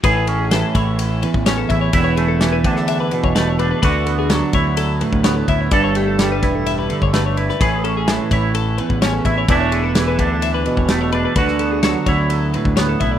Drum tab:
RD |x-x-x-x-x-x-x-x-|x-x-x-x-x-x-x-x-|x-x-x-x-x-x-x-x-|x-x-x-x-x-x-x-x-|
SD |----o-------o---|----o--o----o---|----o-------o---|----o-o-----o--o|
BD |o-----o----o--o-|o-----o----o----|o-----o----o--o-|o-----o----o----|

RD |x-x-x-x-x-x-x-x-|x-x-x-x-x-x-x-x-|x-x-x-x-x-x-x-x-|
SD |----o-------o---|----o-------o---|-o--o-------o---|
BD |o-----o----o--o-|o-----o----o----|o-----o----o--o-|